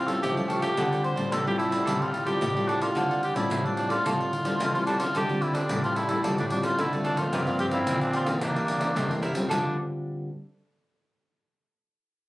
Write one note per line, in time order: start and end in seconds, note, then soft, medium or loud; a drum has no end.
0.00 0.20 A2 medium
0.00 0.19 C4 loud
0.06 0.31 G3 medium
0.06 0.32 C#4 medium
0.06 0.32 F4 medium
0.06 0.22 A4 medium
0.06 0.34 A4 medium
0.06 0.34 C#5 medium
0.06 0.34 F5 medium
0.06 pandeiro medium
0.22 0.74 A2 medium
0.22 0.69 F3 loud
0.22 0.79 A3 medium
0.22 0.35 G4 medium
0.22 pandeiro medium
0.35 0.73 G3 medium
0.35 0.74 C#4 medium
0.35 0.74 F4 medium
0.35 0.47 A4 soft
0.35 0.48 C#5 soft
0.35 0.48 F5 medium
0.35 pandeiro soft
0.48 0.61 G4 medium
0.48 0.61 A4 medium
0.48 0.60 C#5 medium
0.48 0.60 F5 medium
0.48 pandeiro medium
0.61 1.01 G4 medium
0.61 0.76 A4 soft
0.61 0.75 C#5 soft
0.61 0.75 F5 soft
0.61 pandeiro medium
0.76 1.30 D3 medium
0.76 4.33 G3 loud
0.76 1.14 G3 medium
0.76 1.14 C4 soft
0.76 0.89 F4 medium
0.76 1.15 F4 medium
0.76 0.90 A4 medium
0.76 0.90 C5 medium
0.76 0.89 D5 medium
0.76 pandeiro medium
0.91 1.02 A4 soft
0.91 1.03 C5 medium
0.91 1.03 D5 medium
0.91 pandeiro soft
1.04 1.33 C5 loud
1.04 muted cavaquinho stroke soft
1.04 pandeiro soft
1.15 1.29 A2 medium
1.15 1.40 G3 medium
1.15 1.40 C4 medium
1.15 1.41 F4 medium
1.15 1.44 A4 medium
1.15 1.44 C5 medium
1.15 1.43 D5 medium
1.15 pandeiro medium
1.31 1.84 A2 medium
1.31 1.46 A4 loud
1.31 pandeiro medium
1.45 1.83 G3 medium
1.45 1.83 C4 medium
1.45 1.83 F4 medium
1.45 1.53 G4 medium
1.45 1.56 A4 soft
1.45 1.57 C5 soft
1.45 1.57 D5 soft
1.45 pandeiro soft
1.57 2.03 E4 medium
1.57 1.71 F4 medium
1.57 1.70 A4 soft
1.57 1.69 C5 medium
1.57 1.68 D5 medium
1.57 pandeiro medium
1.69 1.84 A4 medium
1.69 1.84 C5 medium
1.69 1.84 D5 medium
1.69 pandeiro medium
1.84 2.33 A2 medium
1.84 2.38 D3 medium
1.84 2.12 G3 medium
1.84 2.12 C4 medium
1.84 1.98 F4 medium
1.84 2.12 F4 medium
1.84 1.99 A4 medium
1.84 1.99 C5 medium
1.84 1.98 D5 medium
1.84 pandeiro medium
1.99 2.25 F4 medium
1.99 2.11 A4 soft
1.99 2.11 C5 soft
1.99 2.11 D5 medium
1.99 pandeiro soft
2.12 muted cavaquinho stroke soft
2.12 pandeiro medium
2.25 2.49 G3 medium
2.25 2.50 C4 medium
2.25 2.50 F4 medium
2.25 2.70 G4 loud
2.25 2.53 A4 medium
2.25 2.53 C5 medium
2.25 2.53 D5 medium
2.25 pandeiro medium
2.42 2.94 A2 medium
2.42 pandeiro medium
2.55 2.92 G3 medium
2.55 2.92 C4 medium
2.55 2.92 F4 medium
2.55 2.67 A4 soft
2.55 2.67 C5 soft
2.55 2.68 D5 medium
2.55 pandeiro soft
2.68 2.84 D4 medium
2.68 2.81 F4 medium
2.68 2.80 A4 medium
2.68 2.80 C5 medium
2.68 2.79 D5 medium
2.68 pandeiro medium
2.80 3.23 F4 medium
2.80 2.95 A4 soft
2.80 2.94 C5 soft
2.80 2.94 D5 medium
2.80 pandeiro medium
2.95 3.47 D3 medium
2.95 3.21 G3 medium
2.95 3.21 C4 soft
2.95 3.09 F4 medium
2.95 3.22 F4 medium
2.95 3.09 A4 medium
2.95 3.09 C5 medium
2.95 3.09 D5 medium
2.95 pandeiro medium
3.10 3.21 A4 soft
3.10 3.22 C5 medium
3.10 3.22 D5 medium
3.10 pandeiro soft
3.22 3.35 G4 medium
3.22 muted cavaquinho stroke soft
3.22 pandeiro medium
3.35 3.47 A2 medium
3.35 3.59 G3 medium
3.35 3.59 C4 medium
3.35 3.61 E4 medium
3.35 3.59 F4 medium
3.35 3.63 A4 medium
3.35 3.62 C5 medium
3.35 3.62 D5 medium
3.35 pandeiro medium
3.49 4.02 A2 medium
3.49 pandeiro loud
3.64 4.01 G3 medium
3.64 4.01 C4 medium
3.64 3.92 D4 medium
3.64 4.02 F4 medium
3.64 3.76 A4 soft
3.64 3.76 C5 soft
3.64 3.77 D5 soft
3.64 pandeiro soft
3.77 3.90 F4 soft
3.77 3.89 A4 soft
3.77 3.89 C5 soft
3.77 3.87 D5 medium
3.77 pandeiro medium
3.89 4.05 F4 medium
3.89 4.04 A4 medium
3.89 4.03 C5 medium
3.89 4.03 D5 medium
3.89 pandeiro medium
4.05 4.52 A2 medium
4.05 4.57 D3 soft
4.05 4.31 G3 soft
4.05 4.31 C4 medium
4.05 4.18 F4 medium
4.05 4.84 F4 loud
4.05 4.32 F4 medium
4.05 4.18 A4 medium
4.05 4.18 C5 medium
4.05 4.18 D5 medium
4.05 pandeiro medium
4.19 4.32 A4 soft
4.19 4.32 C5 soft
4.19 4.32 D5 medium
4.19 pandeiro soft
4.33 muted cavaquinho stroke soft
4.33 pandeiro medium
4.45 4.69 G3 medium
4.45 4.69 C4 medium
4.45 4.69 F4 medium
4.45 4.72 A4 soft
4.45 4.72 C5 medium
4.45 4.72 D5 medium
4.45 pandeiro medium
4.60 5.12 A2 medium
4.60 4.85 E3 loud
4.60 4.86 A3 medium
4.60 pandeiro medium
4.74 5.11 G3 medium
4.74 5.11 C4 medium
4.74 5.11 F4 medium
4.74 4.86 A4 soft
4.74 4.86 C5 soft
4.74 4.86 D5 soft
4.74 pandeiro soft
4.86 5.11 D3 medium
4.86 5.13 G3 medium
4.86 5.00 D4 medium
4.86 4.99 F4 medium
4.86 4.99 A4 medium
4.86 4.99 C5 medium
4.86 4.98 D5 medium
4.86 pandeiro medium
4.99 5.14 F4 medium
4.99 5.13 A4 soft
4.99 5.13 C5 soft
4.99 5.13 D5 soft
4.99 pandeiro medium
5.14 5.67 D3 medium
5.14 5.24 G3 medium
5.14 6.80 G3 medium
5.14 5.24 C4 medium
5.14 5.27 F4 medium
5.14 5.25 F4 medium
5.14 5.44 G4 loud
5.14 5.27 A4 medium
5.14 5.28 C5 medium
5.14 5.28 D5 medium
5.14 pandeiro medium
5.29 5.66 G3 medium
5.29 5.66 C4 medium
5.29 5.66 F4 medium
5.29 5.41 A4 soft
5.29 5.41 C5 soft
5.29 5.41 D5 soft
5.29 pandeiro soft
5.41 5.56 E4 medium
5.41 muted cavaquinho stroke soft
5.41 pandeiro soft
5.53 5.82 D4 medium
5.53 5.81 A4 medium
5.53 5.81 C5 medium
5.53 5.81 D5 medium
5.53 pandeiro medium
5.69 6.21 A2 medium
5.69 6.06 G3 medium
5.69 6.06 C4 medium
5.69 6.06 F4 medium
5.69 pandeiro medium
5.83 5.95 F4 loud
5.83 5.95 A4 soft
5.83 5.95 C5 soft
5.83 5.95 D5 soft
5.83 pandeiro soft
5.95 6.08 E4 medium
5.95 6.08 F4 soft
5.95 6.08 A4 soft
5.95 6.07 C5 medium
5.95 6.06 D5 soft
5.95 pandeiro medium
6.07 6.19 G3 medium
6.07 6.19 C4 medium
6.07 6.22 E4 medium
6.07 6.19 F4 medium
6.07 6.22 A4 soft
6.07 6.22 C5 medium
6.07 6.21 D5 medium
6.07 pandeiro medium
6.23 6.76 D3 medium
6.23 6.40 G3 soft
6.23 6.41 C4 soft
6.23 6.36 F4 medium
6.23 6.41 F4 medium
6.23 6.36 A4 medium
6.23 6.36 C5 medium
6.23 6.36 D5 medium
6.23 pandeiro medium
6.37 6.73 A2 medium
6.37 6.45 D4 medium
6.37 6.49 A4 soft
6.37 6.49 C5 soft
6.37 6.49 D5 medium
6.37 pandeiro soft
6.50 6.87 G3 medium
6.50 6.88 C4 medium
6.50 6.58 D4 medium
6.50 6.88 F4 medium
6.50 muted cavaquinho stroke soft
6.50 pandeiro medium
6.62 6.77 F4 loud
6.62 6.90 A4 medium
6.62 6.90 C5 medium
6.62 6.90 D5 medium
6.62 pandeiro medium
6.78 7.30 A2 medium
6.78 7.25 D3 loud
6.78 7.31 A3 medium
6.78 6.92 E4 medium
6.78 pandeiro medium
6.92 7.16 G3 medium
6.92 7.16 C4 medium
6.92 7.16 F4 medium
6.92 7.04 A4 soft
6.92 7.04 C5 soft
6.92 7.05 D5 medium
6.92 pandeiro soft
7.04 7.19 D4 medium
7.04 7.17 F4 medium
7.04 7.18 A4 medium
7.04 7.17 C5 medium
7.04 7.16 D5 medium
7.04 pandeiro medium
7.17 7.42 F3 medium
7.17 7.42 A#3 medium
7.17 7.42 D4 medium
7.17 7.59 F4 medium
7.17 7.32 A4 soft
7.17 7.31 C5 medium
7.17 7.31 D5 soft
7.17 pandeiro medium
7.31 7.85 G2 medium
7.31 8.43 C4 loud
7.31 7.46 G4 medium
7.31 7.46 A#4 medium
7.31 7.46 D5 medium
7.31 7.46 F5 medium
7.31 pandeiro medium
7.47 7.84 F3 medium
7.47 7.84 A#3 medium
7.47 7.84 D4 medium
7.47 7.58 A#4 soft
7.47 7.58 D5 medium
7.47 7.59 F5 medium
7.47 pandeiro soft
7.59 7.66 G4 medium
7.59 muted cavaquinho stroke soft
7.59 pandeiro medium
7.71 7.99 E4 medium
7.71 7.99 A#4 medium
7.71 7.99 D5 medium
7.71 7.99 F5 medium
7.71 pandeiro medium
7.87 8.34 A#2 loud
7.87 8.39 D3 medium
7.87 8.13 F3 medium
7.87 8.13 A#3 medium
7.87 8.14 D4 medium
7.87 pandeiro medium
8.00 8.14 D4 medium
8.00 8.13 A#4 soft
8.00 8.13 D5 soft
8.00 8.13 F5 soft
8.00 pandeiro soft
8.13 8.28 F4 medium
8.13 8.26 G4 medium
8.13 8.26 A#4 soft
8.13 8.25 D5 medium
8.13 8.24 F5 medium
8.13 pandeiro medium
8.25 8.64 E3 medium
8.25 8.64 A#3 medium
8.25 8.64 D4 medium
8.25 8.40 A#4 medium
8.25 8.40 D5 medium
8.25 8.39 F5 medium
8.25 pandeiro medium
8.41 8.94 C3 soft
8.41 8.97 A#3 loud
8.41 9.20 D4 medium
8.41 8.54 E4 medium
8.41 8.54 A#4 medium
8.41 8.54 C5 medium
8.41 8.54 E5 medium
8.41 pandeiro medium
8.55 8.91 G3 medium
8.55 8.66 A#4 soft
8.55 8.66 C5 medium
8.55 8.67 E5 medium
8.55 pandeiro soft
8.67 8.94 E3 medium
8.67 8.95 A#3 medium
8.67 8.95 D4 medium
8.67 muted cavaquinho stroke soft
8.67 pandeiro medium
8.80 9.08 A#4 medium
8.80 9.08 C5 medium
8.80 9.08 E5 medium
8.80 pandeiro medium
8.95 9.48 G2 medium
8.95 9.43 C3 loud
8.95 9.23 A3 medium
8.95 pandeiro medium
9.09 9.33 E3 medium
9.09 9.33 A#3 medium
9.09 9.33 D4 medium
9.09 9.21 A#4 soft
9.09 9.21 C5 soft
9.09 9.22 E5 medium
9.09 pandeiro soft
9.22 9.49 G3 medium
9.22 9.35 E4 medium
9.22 9.34 A#4 medium
9.22 9.33 C5 medium
9.22 9.33 E5 medium
9.22 pandeiro medium
9.34 9.49 G3 medium
9.34 9.50 C4 medium
9.34 9.51 F4 medium
9.34 9.49 A#4 soft
9.34 9.48 C5 soft
9.34 9.48 E5 soft
9.34 pandeiro medium
9.49 10.29 D3 medium
9.49 9.76 F3 medium
9.49 10.29 G3 medium
9.49 9.75 D4 medium
9.49 9.71 F4 medium
9.49 10.29 F4 medium
9.49 9.72 A4 medium
9.49 9.72 C5 medium
9.49 9.72 D5 medium
9.49 pandeiro medium